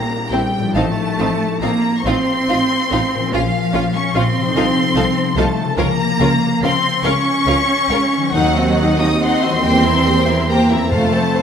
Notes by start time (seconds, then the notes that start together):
Already playing: A#2 G3 A#3 C4 E4 A#5
0.31 A#1 G3 C4 E4 G4 C5 G5
0.58 A2
0.62 F3
0.67 D#4
0.71 A1 A3 F4 F5 A5
0.75 C4 D#4 F4
1.17 A1 C4 D#4 F4 F5
1.60 A1 A#3 C4 D#4 F4 F5 A#5
1.99 C#6
2.04 A1 C4 D#4 F4 F5 C6
2.48 A1 C4 D#4 F4 F5
2.91 A1 C4 D#4 F4 F5
3.15 A#2
3.19 F3
3.24 C#4
3.29 C#4 F4
3.33 A#1 F3 F4 F5
3.74 A#1 C#4 F4 F5
3.94 C#4 C#6
4.14 A#1 C4 C#4 F4 F5 C6
4.37 C3
4.42 F3
4.47 D#4
4.51 C2 A4
4.55 D#4 F4 A4 F5
4.95 C2 D#4 F4 A4 F5
5.35 C2 A3 D#4 F4 A4 F5 A5
5.60 C#3
5.64 F3
5.68 C#4
5.73 C#2 A#4
5.77 A#3 C#4 F4 A#4 F5 A#5
6.19 C#2 C#4 F4 A#4 F5
6.60 C#2 C4 C#4 F4 A#4 F5 C6
7.03 C#2 C#4 F4 A#4 F5 C#6
7.45 C#2 C#4 F4 A#4 F5
7.88 C#2 C#4 F4 A#4 F5
8.16 D#3
8.21 F#3
8.26 C4 C5
8.32 D#2 F#3 D#4 F#5
8.56 C4 F#4 D#5
8.77 D#4 F#5
8.98 C4 D#4 F#4 D#5 D#6
9.20 C4 D#4 F#5 C6
9.41 C4 F#4 D#5
9.45 E3
9.50 G3
9.54 C4
9.59 A#3 G4 A#4 C5 G5
9.63 E2
9.83 C4 E4 A#4 E5
10.05 A#3 G4 C5 G5
10.27 C4 E4 A#4 E5
10.48 A#3 G4 C5 G5 A#5
10.69 C4 E4 A#4 E5
10.73 F2
10.78 A3
10.82 C4
10.86 F2 A4 C5 F5 A5
10.91 F2 A3 A4
11.12 C4 A4 C5 A5
11.35 A3 A4 C5 F5